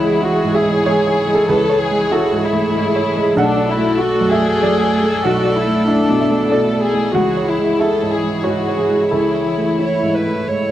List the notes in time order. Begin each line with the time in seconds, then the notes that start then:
Already playing: C#2 E3 E4 G#4 C#5 F#5
0.02 G#3
0.22 E4 F#4
0.44 G#2
0.55 G#4 E5
0.65 G#3
0.85 G#2 C#5
1.07 C#5
1.27 G#3
1.34 A4
1.49 C#2 A4 B4
1.70 C#5
1.80 G#4
1.91 G#3
2.11 E4 F#4 A4
2.32 G#2
2.44 E4
2.53 A3
2.75 G#2
2.96 C#5
3.16 G#3
3.36 B1 A3 D4 F#4 A4 D5 F#5
3.57 D5
3.68 E4
3.78 A3
3.99 F#4
4.21 F#2
4.31 G#4 E5
4.42 A3
4.63 F#2 D5
4.83 D5
5.03 A3
5.25 B1 E4 F#4 F#5
5.45 D5
5.56 E4
5.67 A3
5.87 D4 E4
6.09 B2
6.20 E5
6.31 A3
6.50 B2 A4 D5
6.73 D5
6.83 G#4
6.94 A3
7.14 C#2 E3 F#4 G#4 C#5 F#5
7.37 C#5
7.48 E4
7.58 G#3
7.79 E4 G#4 A4 E5
8.02 G#2
8.13 G#4
8.24 G#3
8.44 G#2 F#4 G#4 C#5
8.68 C#5
8.78 G#4
8.90 G#3
9.11 C#2 E4 G#4 A4
9.35 C#5
9.57 A3
9.79 E4 C#5
10.02 G#2
10.15 B4
10.25 A3
10.48 G#2 C#5